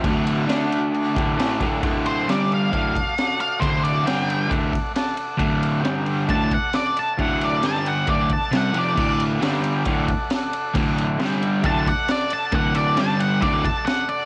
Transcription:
<<
  \new Staff \with { instrumentName = "Lead electric guitar" } { \time 4/4 \key d \major \tempo 4 = 134 r1 | r8 c''8 d''8 f''2 f''8 | c''8 d''8 g''4 r2 | r2 a''8 fis''8 d''8 a''8 |
fis''8 d''8 a''8 fis''8 d''8 a''8 fis''8 d''8 | d''8 r2. r8 | r2 a''8 fis''8 d''8 a''8 | fis''8 d''8 a''8 fis''8 d''8 a''8 fis''8 d''8 | }
  \new Staff \with { instrumentName = "Transistor combo organ" } { \time 4/4 \key d \major << { r1 | r1 | r2. a''8 fis''8 | r1 |
r1 | r1 | r1 | r1 | } \\ { <fis' a' d''>4 <fis' a' d''>4 <fis' a' d''>4 <fis' a' d''>4 | <fis' a' d''>4 <d' g' d''>4 <fis' a' d''>4 <fis' a' d''>4 | <fis' a' d''>4 <g' d'' g''>4 <a' d'' fis''>4 <a' d'' fis''>4 | <a' d'' fis''>4 <g' d'' g''>4 <a' d'' fis''>4 <a' d'' fis''>4 |
<a' d'' fis''>4 <g' d'' g''>4 <a' d'' fis''>4 <a' d'' fis''>4 | <a' d'' fis''>4 <g' d'' g''>4 <a' d'' fis''>4 <a' d'' fis''>4 | <a' d'' fis''>4 <g' d'' g''>4 <a' d'' fis''>4 <a' d'' fis''>4 | <a' d'' fis''>4 <g' d'' g''>4 <a' d'' fis''>4 <a' d'' fis''>4 | } >> }
  \new Staff \with { instrumentName = "Overdriven electric guitar" } { \clef bass \time 4/4 \key d \major <d, a, d>4 <d a d'>4. <d, a, d>8 <a, e a>8 <d, a, d>8 | <d, a, d>4 <g, d g>4 <d, a, d>8 r4. | <d, a, d>4 <g, d g>4 <d, a, d>8 r4. | <d, a, d>4 <g, d g>4 <d, a, d>8 r4. |
<d, a, d>4 <g, d g>4 <d, a, d>8 r8 <c g c'>8 <f, c f>8 | <d, a, d>4 <g, d g>4 <d, a, d>8 r4. | <d, a, d>4 <g, d g>4 <d, a, d>8 r4. | <d, a, d>4 <g, d g>4 <d, a, d>8 r4. | }
  \new DrumStaff \with { instrumentName = "Drums" } \drummode { \time 4/4 <bd cymr>8 cymr8 <cymr sn>8 cymr8 cymr8 <bd cymr>8 <cymr sn>8 <bd cymr>8 | <bd cymr>8 cymr8 <cymr sn>8 cymr8 <bd cymr>8 <bd cymr>8 <cymr sn>8 cymr8 | <bd cymr>8 cymr8 <cymr sn>8 cymr8 <bd cymr>8 <bd cymr>8 <cymr sn>8 cymr8 | <bd cymr>8 cymr8 <cymr sn>8 cymr8 <bd cymr>8 <bd cymr>8 <cymr sn>8 cymr8 |
<bd cymr>8 cymr8 <cymr sn>8 cymr8 <bd cymr>8 <bd cymr>8 <cymr sn>8 cymr8 | <cymc bd>8 cymr8 <cymr sn>8 cymr8 <bd cymr>8 <bd cymr>8 <cymr sn>8 cymr8 | <bd cymr>8 cymr8 <cymr sn>8 cymr8 <bd cymr>8 <bd cymr>8 <cymr sn>8 cymr8 | <bd cymr>8 cymr8 <cymr sn>8 cymr8 <bd cymr>8 <bd cymr>8 <cymr sn>8 cymr8 | }
>>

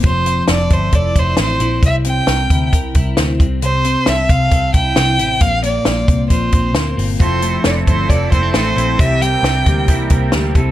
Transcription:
<<
  \new Staff \with { instrumentName = "Violin" } { \time 4/4 \key f \major \tempo 4 = 134 c''4 d''8 c''8 d''8 c''8 c''4 | e''8 g''4. r2 | c''4 e''8 f''4 g''4. | f''8 d''4. c''4. r8 |
c''4 d''8 c''8 d''8 c''8 c''4 | e''8 g''4. r2 | }
  \new Staff \with { instrumentName = "Clean electric guitar" } { \time 4/4 \key f \major f8 c'8 a'8 e'8 a'8 e'8 c'8 e'8 | c8 c'8 bes'8 e'8 bes'8 e'8 c'8 c8 | c8 c'8 a'4 a'8 e'8 c'8 e'8 | bes,8 bes8 f'8 c'8 f'8 c'8 bes8 c'8 |
f8 a8 e'8 c'8 e'8 bes16 c'16 a8 c'8 | c8 g8 e'8 bes8 e'8 bes8 g8 c8 | }
  \new Staff \with { instrumentName = "Clean electric guitar" } { \time 4/4 \key f \major r1 | r1 | r1 | r1 |
<f a c' e' a'>8 <c' e' a'>8 <a c' e' a'>8 <c' e' a'>8 <f a c' e' a'>8 <c' e' a'>8 <a c' e' a'>8 <c' e' a'>8 | <c e g c' g' bes'>8 <g c' g' bes'>8 <g c' g' bes'>8 <g c' g' bes'>8 <c e g c' g' bes'>8 <g c' g' bes'>8 <g c' g' bes'>8 <a c' e' a'>8 | }
  \new Staff \with { instrumentName = "Picked electric bass" } { \clef bass \time 4/4 \key f \major f,,4 f,,8 g,,8 f,,8 f,,8 a,,8 bes,,8 | c,4 c,8 d,8 c,8 c,8 d,8 c,8~ | c,4 c,8 c,8 c,8 c,8 c,8 a,,8 | bes,,4 bes,,8 c,8 bes,,8 bes,,8 d,8 g,,8 |
f,,4 f,,8 g,,8 f,,8 f,,8 a,,8 bes,,8 | c,4 c,8 d,8 c,8 c,8 d,8 c,8 | }
  \new DrumStaff \with { instrumentName = "Drums" } \drummode { \time 4/4 <hh bd>8 hh8 <hh sn>8 <hh bd>8 <hh bd>8 <hh bd>8 <hh sn>8 hh8 | <hh bd>8 hh8 <hh sn>8 <hh bd>8 <hh bd>8 <hh bd>8 <hh sn>8 <hh bd>8 | hh8 hh8 <hh sn>8 <hh bd>8 <hh bd>8 <hh bd>8 <hh sn>8 hh8 | <hh bd>8 hh8 <hh sn>8 <hh bd>8 <hh bd>8 <hh bd>8 <hh sn>8 hho8 |
<hh bd>8 hh8 <hh sn>8 <hh bd>8 <hh bd>8 <hh bd>8 <hh sn>8 hh8 | <hh bd>8 hh8 <hh sn>8 <hh bd>8 <hh bd>8 <hh bd>8 <hh sn>8 <hh bd>8 | }
>>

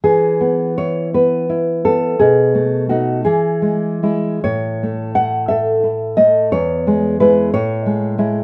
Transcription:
\new Staff \with { instrumentName = "Nylon-string guitar" } { \time 6/8 \key e \major \tempo 4. = 58 << { gis'4 cis''8 b'4 a'8 | gis'4 fis'8 gis'4. | cis''4 fis''8 e''4 dis''8 | cis''4 b'8 cis''4. | } \\ { e8 b8 e'8 b8 e'8 b8 | b,8 a8 <a dis'>8 e8 gis8 <gis e'>8 | a,8 a8 e'8 a'8 e'8 a8 | e,8 gis8 <gis e'>8 a,8 gis8 <gis e'>8 | } >> }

